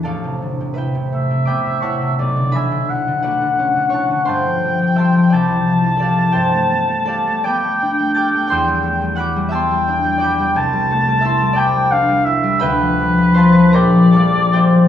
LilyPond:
<<
  \new Staff \with { instrumentName = "Oboe" } { \time 6/8 \key a \minor \tempo 4. = 57 r4. e''4. | d''8 e''8 fis''2 | g''4. a''4.~ | a''4. g''4.~ |
g''4 r8 g''4. | a''4. g''8 f''8 e''8 | b'4. d''4. | }
  \new Staff \with { instrumentName = "Harp" } { \time 6/8 \key a \minor <a' d'' f'' a''>4 <b' e'' g'' b''>4 <d'' g'' b'' d'''>8 <cis'' fis'' a'' cis'''>8~ | <cis'' fis'' a'' cis'''>8 <b' e'' gis'' b''>4 <fis' b' d'' fis''>4 <cis'' fis'' a'' cis'''>8 | <c'' f'' a'' c'''>4 <e'' a'' c''' e'''>8 <d'' g'' b'' d'''>4 <a' d'' f'' a''>8 | <g' c'' e'' g''>4 <a' d'' f'' a''>8 <d'' g'' b'' d'''>4 <a'' d''' f''' a'''>8 |
<g'' c''' e''' g'''>4 <fis'' b'' d''' fis'''>8 <e'' a'' c''' e'''>4 <d'' g'' b'' d'''>8~ | <d'' g'' b'' d'''>4 <e'' a'' c''' e'''>8 <d'' g'' b'' d'''>4. | <b' e'' g'' b''>4 <c'' f'' a'' c'''>8 <bes' e'' g'' bes''>8 <a' d'' f'' a''>8 <g' c'' e'' g''>8 | }
  \new Staff \with { instrumentName = "Harp" } { \clef bass \time 6/8 \key a \minor <a,, a b>16 c16 d16 c16 e'16 c16 a16 c16 b16 c16 e'16 c16 | b,,16 d16 e16 d16 e'16 d16 a16 d16 cis'16 d16 e'16 d16 | g,,16 f16 g16 f16 g'16 f16 c,16 e16 f16 e16 g'16 e16 | g,16 a16 b16 a16 g'16 a16 b16 a16 d'16 a16 g'16 a16 |
e,16 g16 a16 g16 fis'16 g16 b16 g16 d'16 g16 fis'16 g16 | c,16 g16 a16 g16 e'16 g16 c'16 g16 d'16 g16 e'16 g16 | d,16 f16 g16 f16 f'16 f16 bes,,16 f16 g16 f16 f'16 f16 | }
>>